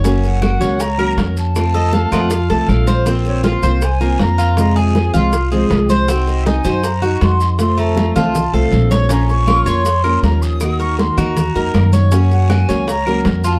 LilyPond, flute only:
\new Staff \with { instrumentName = "Flute" } { \time 4/4 \key bes \minor \tempo 4 = 159 r8 ges''4. bes''4 r8 a''8~ | a''2. r4 | r8 des''8 f''4 aes''4 bes''4 | bes''8 aes''4 f''4 c''4 r8 |
r8 ees''8 aes''4 bes''4 c'''4 | c'''8 bes''4 a''4 f''4 r8 | bes''8 des'''4 c'''4. bes''8 ees'''8~ | ees'''8 des'''8 c'''8 bes''2 r8 |
r8 ges''8 aes''4 bes''4 r8 a''8 | }